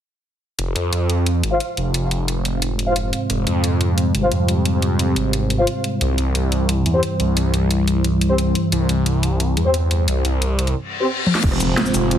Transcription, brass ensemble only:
1.52 1.59 F4 medium
1.52 1.59 C5 medium
1.52 1.59 F5 medium
2.87 2.94 F4 medium
2.87 2.94 C5 medium
2.87 2.94 F5 medium
4.23 4.30 F4 medium
4.23 4.30 C5 medium
4.23 4.30 F5 medium
5.59 5.66 F4 medium
5.59 5.66 C5 medium
5.59 5.66 F5 medium
6.94 7.01 C4 medium
6.94 7.01 G4 medium
6.94 7.01 C5 medium
8.30 8.37 C4 medium
8.30 8.37 G4 medium
8.30 8.37 C5 medium
9.65 9.72 C4 medium
9.65 9.72 G4 medium
9.65 9.72 C5 medium
11.01 11.08 C4 medium
11.01 11.08 G4 medium
11.01 11.08 C5 medium

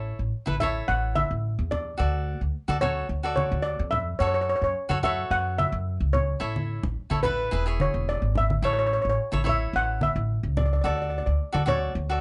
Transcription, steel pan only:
0.00 0.28 C#5 medium
0.60 0.86 E5 medium
0.88 1.16 F#5 medium
1.15 1.72 E5 medium
1.71 2.50 D5 medium
2.81 3.35 C#5 medium
3.36 3.65 C#5 medium
3.62 3.92 D5 medium
3.91 4.20 E5 medium
4.19 4.26 C#5 medium
4.27 4.33 C#5 medium
4.34 4.40 C#5 medium
4.41 4.48 C#5 medium
4.49 4.55 C#5 medium
4.56 4.63 C#5 medium
4.64 4.71 C#5 medium
5.04 5.32 E5 medium
5.31 5.59 F#5 medium
5.58 6.10 E5 medium
6.13 6.92 C#5 medium
7.23 7.75 B4 medium
7.81 8.09 C#5 medium
8.09 8.37 D5 medium
8.38 8.65 E5 medium
8.65 8.71 C#5 medium
8.73 8.78 C#5 medium
8.79 8.85 C#5 medium
8.87 8.92 C#5 medium
8.93 9.00 C#5 medium
9.02 9.08 C#5 medium
9.10 9.15 C#5 medium
9.49 9.76 E5 medium
9.76 9.88 F#5 medium
10.03 10.59 E5 medium
10.57 10.64 D5 medium
10.66 10.72 D5 soft
10.73 10.79 D5 medium
10.81 10.86 D5 soft
10.87 10.94 D5 soft
10.97 11.01 D5 soft
11.02 11.09 D5 soft
11.10 11.17 D5 soft
11.18 11.25 D5 medium
11.26 11.32 D5 soft
11.68 12.20 C#5 medium

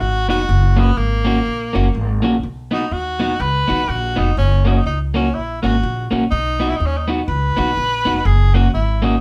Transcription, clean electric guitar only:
0.29 0.41 B3 medium
0.29 0.41 D#4 medium
0.29 0.42 F#4 medium
0.76 0.89 A#3 medium
0.76 0.89 C#4 medium
0.76 0.90 F#4 medium
1.25 1.38 A#3 loud
1.25 1.38 C#4 loud
1.25 1.39 F#4 loud
1.73 1.86 A#3 medium
1.73 1.87 C#4 medium
1.73 1.87 F#4 medium
2.22 2.35 A#3 medium
2.22 2.35 C#4 medium
2.22 2.36 F#4 medium
2.71 2.84 B3 medium
2.71 2.84 D#4 medium
2.71 2.85 F#4 medium
3.20 3.32 B3 loud
3.20 3.33 D#4 loud
3.20 3.33 F#4 loud
3.68 3.80 B3 medium
3.68 3.81 D#4 medium
3.68 3.81 F#4 medium
4.16 4.29 B3 medium
4.16 4.29 D#4 medium
4.16 4.30 F#4 medium
4.65 4.78 A#3 medium
4.65 4.78 C#4 medium
4.65 4.79 F#4 medium
5.14 5.27 A#3 medium
5.14 5.27 C#4 loud
5.14 5.28 F#4 medium
5.63 5.75 A#3 medium
5.63 5.76 C#4 medium
5.63 5.76 F#4 medium
6.11 6.23 A#3 medium
6.11 6.24 C#4 medium
6.11 6.24 F#4 medium
6.60 6.72 B3 medium
6.60 6.73 D#4 medium
6.60 6.73 F#4 medium
7.08 7.20 B3 medium
7.08 7.21 D#4 medium
7.08 7.21 F#4 medium
7.57 7.69 B3 medium
7.57 7.70 D#4 medium
7.57 7.70 F#4 loud
8.05 8.18 B3 medium
8.05 8.18 D#4 medium
8.05 8.19 F#4 medium
8.54 8.66 A#3 medium
8.54 8.67 C#4 medium
8.54 8.67 F#4 medium
9.02 9.15 A#3 loud
9.02 9.15 C#4 loud
9.02 9.15 F#4 loud

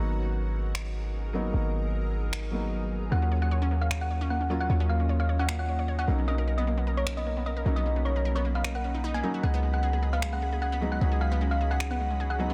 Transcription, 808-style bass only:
0.00 1.52 G#1 medium
1.54 3.10 G#1 medium
3.12 4.68 D#2 medium
4.70 6.06 D#2 medium
6.08 7.64 B1 medium
7.66 9.22 B1 medium
9.43 10.99 C#2 medium
11.01 12.54 C#2 medium

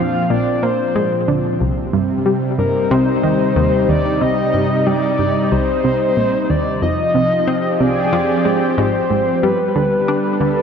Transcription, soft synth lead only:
0.00 0.32 F5 loud
0.30 0.64 D5 loud
0.63 1.28 C5 medium
2.59 2.93 A#4 medium
2.91 3.91 C5 loud
3.89 4.23 D5 loud
4.22 4.88 D#5 loud
4.87 5.53 D5 loud
5.52 6.51 C5 loud
6.50 6.82 D5 loud
6.82 7.82 D#5 loud
7.80 8.80 D5 loud
8.78 9.45 C5 loud
9.43 10.62 B4 loud

